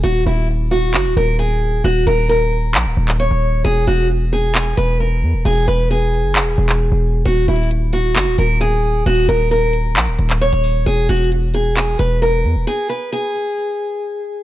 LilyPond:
<<
  \new Staff \with { instrumentName = "Steel-string acoustic guitar" } { \time 4/4 \key ees \phrygian \tempo 4 = 133 ges'8 fes'8 r8 ges'8 ges'8 bes'8 aes'4 | ges'8 bes'8 bes'2 des''4 | gis'8 fis'8 r8 gis'8 gis'8 b'8 bes'4 | gis'8 b'8 gis'2. |
ges'8 fes'8 r8 ges'8 ges'8 bes'8 aes'4 | ges'8 bes'8 bes'2 des''4 | gis'8 ges'8 r8 gis'8 gis'8 b'8 bes'4 | gis'8 b'8 gis'2. | }
  \new Staff \with { instrumentName = "808-style bass" } { \clef bass \time 4/4 \key ees \phrygian ees,,8 ees,,4. ges,,16 ees,,16 ees,,4. | ees,,8 ees,,4. bes,,16 ees,,16 ees,,8. ees,,8. | e,,8 e,,2 e,,4 e,16 e,,16 | e,,8 e,,4~ e,,16 fis,,16. e,,16. e,,8. e,,8. |
ees,,8 ees,,4. ges,,16 ees,,16 ees,,4. | ees,,8 ees,,4. bes,,16 ees,,16 ees,,8. ees,,8. | e,,8 e,,2 e,,4 e,16 e,,16 | r1 | }
  \new DrumStaff \with { instrumentName = "Drums" } \drummode { \time 4/4 r4 r4 hc4 r4 | r4 r4 hc8. hc16 r4 | r4 r4 hc4 r4 | r4 r4 hc8. hc16 r4 |
\tuplet 3/2 { hh16 r16 r16 hh16 hh16 hh16 } hh8 hh8 <hc hh>8 hh8 hh4 | hh8 hh8 hh8 hh8 <hc hh>8 hh16 hc16 hh16 hh16 hho8 | \tuplet 3/2 { hh16 r16 r16 hh16 hh16 hh16 } hh8 hh8 <hc hh>8 hh8 hh4 | r4 r4 r4 r4 | }
>>